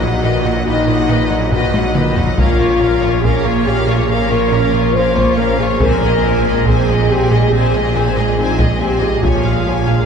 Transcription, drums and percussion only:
1.52 taiko low-mid medium
1.74 taiko high medium
1.95 taiko mid medium
2.17 taiko low medium
2.38 taiko medium
3.24 taiko medium
5.17 taiko medium
5.80 taiko loud
6.66 taiko medium
8.59 taiko medium
9.23 taiko loud

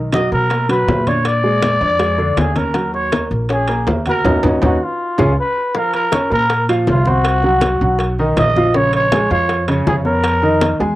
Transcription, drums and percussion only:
0.12 high bongo medium
0.12 high conga medium
0.12 high timbale medium
0.12 low timbale medium
0.32 high bongo soft
0.32 high conga soft
0.50 high bongo medium
0.50 high conga soft
0.50 high timbale medium
0.70 high bongo soft
0.70 high conga soft
0.70 high timbale medium
0.88 high bongo medium
0.88 low bongo medium
0.88 high conga medium
0.88 low timbale medium
1.07 high conga medium
1.07 high timbale medium
1.25 high bongo medium
1.25 high conga soft
1.25 high timbale medium
1.45 high conga soft
1.63 high bongo medium
1.63 high conga medium
1.63 high timbale medium
1.63 low timbale medium
1.81 high bongo soft
1.81 high conga soft
2.00 high bongo medium
2.00 high conga soft
2.00 high timbale medium
2.18 high bongo soft
2.18 high conga soft
2.37 high bongo medium
2.37 low bongo medium
2.37 high conga medium
2.37 high timbale medium
2.37 low timbale medium
2.56 high bongo soft
2.56 high conga medium
2.56 high timbale medium
2.74 high bongo medium
2.74 high conga soft
2.74 high timbale medium
2.94 high bongo soft
2.94 high conga soft
3.12 high bongo medium
3.12 high conga medium
3.12 high timbale medium
3.12 low timbale medium
3.32 high bongo soft
3.32 high conga soft
3.49 high bongo medium
3.49 high conga soft
3.49 high timbale medium
3.67 high bongo soft
3.67 high conga soft
3.67 high timbale medium
3.87 high bongo medium
3.87 low bongo medium
3.87 high conga medium
3.87 low timbale medium
4.06 high conga medium
4.06 high timbale medium
4.25 low bongo medium
4.25 low conga loud
4.25 high timbale medium
4.43 low bongo medium
4.43 low conga medium
4.43 high timbale loud
4.62 low bongo loud
4.62 low conga medium
4.62 high timbale medium
5.18 low bongo loud
5.18 low conga medium
5.18 high timbale medium
5.75 high bongo medium
5.75 high conga soft
5.94 high bongo soft
5.94 high conga soft
5.94 high timbale medium
6.12 high bongo medium
6.12 high conga loud
6.12 high timbale loud
6.32 high conga soft
6.50 high bongo medium
6.50 high conga soft
6.50 high timbale medium
6.69 high conga soft
6.69 high timbale medium
6.87 high bongo soft
6.87 low bongo medium
6.87 high conga medium
6.87 low timbale medium
7.05 high bongo soft
7.05 high conga medium
7.24 high bongo medium
7.24 high conga soft
7.24 high timbale loud
7.43 high bongo soft
7.43 high conga soft
7.61 high bongo medium
7.61 high conga loud
7.61 high timbale loud
7.81 high conga soft
7.99 high bongo medium
7.99 high conga soft
7.99 high timbale medium
8.19 high conga soft
8.37 high bongo soft
8.37 low bongo medium
8.37 high conga medium
8.37 high timbale medium
8.37 low timbale medium
8.56 high bongo soft
8.56 high conga medium
8.75 high bongo medium
8.75 high conga soft
8.93 high bongo soft
8.93 high conga soft
8.93 high timbale medium
9.12 high bongo medium
9.12 high conga loud
9.12 high timbale loud
9.31 high conga soft
9.49 high bongo medium
9.49 high conga soft
9.49 high timbale medium
9.68 high conga soft
9.68 high timbale medium
9.87 high bongo soft
9.87 low bongo medium
9.87 high conga medium
9.87 low timbale medium
10.05 high bongo soft
10.24 high bongo medium
10.24 high conga soft
10.24 high timbale loud
10.42 high bongo soft
10.42 high conga soft
10.61 high bongo medium
10.61 high conga loud
10.61 high timbale loud
10.80 high conga soft

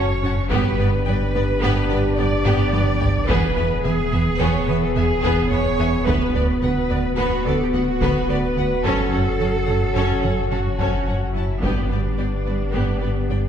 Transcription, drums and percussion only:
0.51 taiko medium
2.45 taiko mid medium
2.73 taiko high medium
3.01 taiko low medium
3.29 taiko medium
5.23 taiko medium
6.07 taiko medium
8.01 taiko medium
8.84 taiko medium
10.80 taiko medium
11.62 taiko medium

